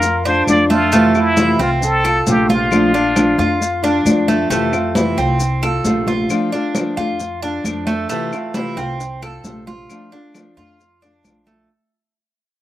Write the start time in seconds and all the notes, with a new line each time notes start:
Already playing: F2 F4 A#4
0.02 muted nylon-string guitar stroke, high conga, maracas
0.25 A3 D4 F4 C5, high conga, maracas
0.47 F2 F3 A3 D4 F4 D5, high conga, claves, maracas
0.70 A3 F4, high conga, maracas
0.92 C3 E3 A3 C4 F4, maracas
1.15 A3 C4 E4 F4, high conga, claves, maracas
1.37 C3 E3 A3 C4 E4 F4, high conga, maracas
1.59 C2 A3 C4 F4, high conga, maracas
1.81 A4, muted nylon-string guitar stroke, high conga, maracas
2.04 A3 C4 F4 A4, high conga, claves, maracas
2.27 A#1 C3 A3 C4 F4 G4, high conga, maracas
2.49 F4, high conga, maracas
2.71 F3 A3 D4 F4, claves, maracas
2.93 A3 D4 F4, high conga, maracas
3.16 F3 A3 D4 F4, high conga, claves, maracas
3.38 F2 A3 D4 F4, high conga, maracas
3.61 muted nylon-string guitar stroke, high conga, maracas
3.82 A3 D4 F4, high conga, maracas
4.05 F2 F3 A3 D4 F4, high conga, claves, maracas
4.28 A3, high conga, maracas
4.50 F2 C3 E3 A3 C4 F4, high conga, maracas
4.72 A3 C4 F4, high conga, claves, maracas
4.95 C3 E3 A3 C4 E4 F4, high conga, maracas
5.17 C2 A3 C4 F4, high conga, maracas
5.40 muted nylon-string guitar stroke, high conga, maracas
5.62 A3 C4 F4 A4, high conga, claves, maracas
5.84 A#1 C3 A3 C4 F4, high conga, maracas
6.07 F4, high conga, maracas
6.30 F3 A3 D4 F4, claves, maracas
6.52 A3 D4 F4, high conga, maracas
6.75 F3 A3 D4 F4, high conga, claves, maracas
6.97 F2 A3 D4 F4, high conga, maracas
7.20 muted nylon-string guitar stroke, high conga, maracas
7.42 A3 D4 F4, high conga, maracas
7.64 F2 F3 A3 D4 F4, high conga, claves, maracas
7.87 A3, high conga, maracas
8.09 C3 E3 A3 C4 F4, high conga, maracas
8.32 A3 C4 F4, high conga, claves, maracas
8.54 C3 E3 A3 C4 E4 F4, high conga, maracas
8.77 C2 A3 C4 F4, high conga, maracas
8.99 muted nylon-string guitar stroke, high conga, maracas
9.22 A3 C4 F4 A4, high conga, claves, maracas
9.44 A#1 C3 A3 C4 F4, high conga, maracas
9.67 F4, high conga, maracas
9.90 F3 A3 D4 F4, high conga, claves, maracas
10.12 A3 D4 F4, high conga, maracas
10.34 F3 A3 D4 F4, high conga, claves, maracas
10.57 F2 A3 D4 F4, high conga, maracas
10.80 muted nylon-string guitar stroke, high conga, maracas
11.02 A3 D4 F4, high conga, maracas
11.24 A#1 F3 A3 D4 F4, high conga, claves, maracas
11.47 A3, high conga, maracas